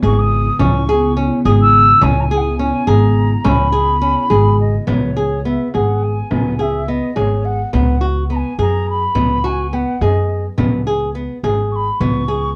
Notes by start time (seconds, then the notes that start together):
Already playing: C#3 B3 E4
0.02 G#1 G#4 C#6, frame drum
0.19 D#6
0.59 C#2 C#4 C#6, frame drum
0.88 G#4, frame drum
1.16 C#4, frame drum
1.45 G#1 G#4 D#6, frame drum
1.61 E6
2.01 C#2 C#4 G#5, frame drum
2.20 G#5 A#5
2.31 G#4, frame drum
2.37 F#5 G#5
2.59 C#4 G#5, frame drum
2.87 G#1 G#4 A#5, frame drum
3.44 C#2 C#4 C#6, frame drum
3.49 B5
3.72 G#4
4.02 C#4
4.30 G#1 G#4, frame drum
4.60 D#5
4.87 C#2 B3 C#5, frame drum
5.17 G#4
5.45 B3 E5
5.74 G#1 G#4 F#5, frame drum
6.03 G#5
6.31 C#2 B3, frame drum
6.59 G#4 E5
6.88 B3 D#5
7.16 G#1 G#4 C#5, frame drum
7.45 F#5
7.73 C#2 B3 F#5, frame drum
8.01 F#4
8.30 B3 A#5
8.36 G#5
8.59 F#2 G#4 A#5, frame drum
8.89 B5
9.15 C#2 B3, frame drum
9.44 F#4 G#5, frame drum
9.73 B3 F#5, frame drum
10.01 F#2 G#4 D#5, frame drum
10.58 C#2 B3, frame drum
10.87 G#4
11.15 B3
11.43 G#1 G#4, frame drum
11.71 C#6
11.75 B5
12.00 C#2 B3 C#6, frame drum
12.28 G#4